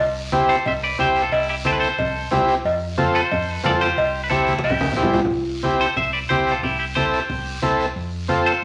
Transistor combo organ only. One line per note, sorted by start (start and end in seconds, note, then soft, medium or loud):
0.32 0.56 C4 medium
0.32 0.56 E4 medium
0.32 0.56 G4 loud
0.98 1.22 C4 medium
0.98 1.22 E4 medium
0.98 1.22 G4 medium
1.65 1.88 C4 medium
1.65 1.88 E4 medium
1.65 1.89 A4 medium
2.31 2.55 C4 medium
2.31 2.55 E4 medium
2.31 2.55 G4 loud
2.98 3.21 C4 medium
2.98 3.21 F4 medium
2.98 3.21 A4 loud
3.64 3.87 C4 medium
3.64 3.87 F4 medium
3.64 3.88 A4 medium
4.30 4.54 C4 medium
4.30 4.54 E4 medium
4.30 4.54 G4 medium
4.96 5.20 C4 medium
4.96 5.20 E4 medium
4.96 5.20 G4 medium
5.63 5.87 C4 medium
5.63 5.87 E4 medium
5.63 5.87 G4 medium
6.30 6.53 C4 medium
6.30 6.53 E4 medium
6.30 6.54 G4 medium
6.96 7.19 C4 medium
6.96 7.20 E4 medium
6.96 7.20 A4 medium
7.62 7.86 C4 medium
7.62 7.86 E4 medium
7.62 7.86 A4 medium
8.28 8.52 C4 medium
8.28 8.52 F4 medium
8.28 8.53 A4 loud